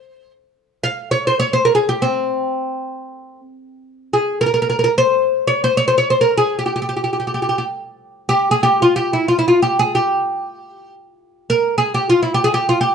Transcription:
0.00 0.31 C5 medium
0.84 1.11 F5 medium
1.11 1.27 C#5 medium
1.27 1.39 C5 medium
1.40 1.52 C#5 medium
1.53 1.64 C5 medium
1.65 1.74 A#4 medium
1.75 1.87 G#4 medium
1.89 2.02 G4 medium
2.02 3.39 C4 medium
4.13 4.41 G#4 medium
4.41 4.45 A#4 medium
4.46 4.53 A#4 medium
4.54 4.60 A#4 medium
4.62 4.68 A#4 medium
4.70 4.76 A#4 medium
4.79 4.83 A#4 medium
4.84 4.91 A#4 medium
4.98 5.47 C5 medium
5.47 5.63 C#5 medium
5.64 5.77 C5 medium
5.77 5.87 C#5 medium
5.88 5.97 C5 medium
5.98 6.10 C#5 medium
6.10 6.21 C5 medium
6.21 6.36 A#4 medium
6.38 6.57 G#4 medium
6.59 6.65 G4 medium
6.66 6.73 G4 soft
6.76 6.81 G4 soft
6.82 6.88 G4 soft
6.89 6.95 G4 soft
6.97 7.03 G4 soft
7.04 7.10 G4 soft
7.13 7.19 G4 soft
7.20 7.26 G4 soft
7.27 7.33 G4 soft
7.34 7.40 G4 soft
7.42 7.48 G4 soft
7.49 7.55 G4 soft
7.58 7.64 G4 soft
8.29 8.51 G4 medium
8.51 8.63 G#4 medium
8.63 8.82 G4 medium
8.82 8.96 F4 medium
8.96 9.12 G4 medium
9.13 9.26 E4 medium
9.28 9.38 F4 medium
9.39 9.47 E4 medium
9.48 9.61 F4 medium
9.62 9.79 G4 medium
9.79 9.93 G#4 medium
9.95 10.93 G4 medium
11.50 11.77 A#4 medium
11.78 11.93 G#4 medium
11.94 12.07 G4 medium
12.10 12.20 F4 medium
12.23 12.32 E4 medium
12.34 12.43 G4 medium
12.44 12.54 G#4 medium
12.54 12.66 G4 medium
12.69 12.80 F4 medium
12.81 12.95 G4 medium

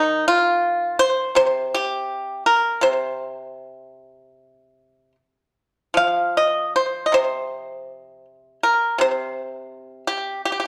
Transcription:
0.00 1.35 D#3 medium
0.00 0.25 D#4 medium
0.28 0.96 F4 loud
0.99 1.35 C5 loud
1.35 2.80 C3 medium
1.35 1.72 C5 loud
1.74 2.43 G4 loud
2.46 2.81 A#4 medium
2.81 5.15 C3 medium
2.81 5.12 C5 medium
5.94 8.25 F3 medium
5.94 6.34 F5 medium
6.37 6.73 D#5 medium
6.76 7.04 C5 medium
7.06 7.13 D#5 medium
7.12 8.97 C3 medium
7.12 8.60 C5 medium
8.63 8.97 A#4 medium
8.98 10.67 C3 medium
8.98 10.04 C5 medium
10.07 10.41 G4 medium
10.45 10.51 G4 medium
10.52 10.58 G4 soft
10.60 10.64 G4 medium

